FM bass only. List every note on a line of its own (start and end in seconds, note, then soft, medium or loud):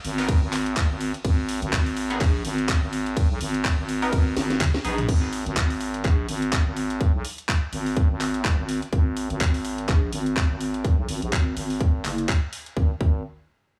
0.05 0.40 G#1 medium
0.42 0.88 G#1 loud
0.90 1.12 G#1 medium
1.25 1.60 G#1 medium
1.62 1.71 G#1 loud
1.73 2.19 G#1 loud
2.21 2.43 A#1 loud
2.45 2.80 G#1 loud
2.82 3.28 G#1 loud
3.30 3.39 B1 loud
3.41 3.76 G#1 medium
3.78 4.11 G#1 medium
4.13 4.35 G#1 loud
4.37 4.59 G#1 loud
4.85 5.07 A#1 loud
5.09 5.44 G#1 medium
5.46 5.55 G#1 loud
5.57 6.03 G#1 loud
6.05 6.27 A#1 medium
6.29 6.64 G#1 loud
6.66 7.12 G#1 loud
7.14 7.23 B1 loud
7.73 8.08 G#1 medium
8.10 8.56 G#1 loud
8.58 8.80 G#1 loud
8.93 9.28 G#1 medium
9.30 9.39 G#1 loud
9.41 9.87 G#1 medium
9.89 10.11 A#1 loud
10.13 10.48 G#1 loud
10.50 10.96 G#1 loud
10.98 11.07 B1 loud
11.09 11.20 G#1 medium
11.22 11.31 A#1 medium
11.33 11.55 G#1 medium
11.57 12.03 G#1 medium
12.05 12.27 F#1 loud
12.77 12.91 G#1 medium
13.01 13.23 G#1 medium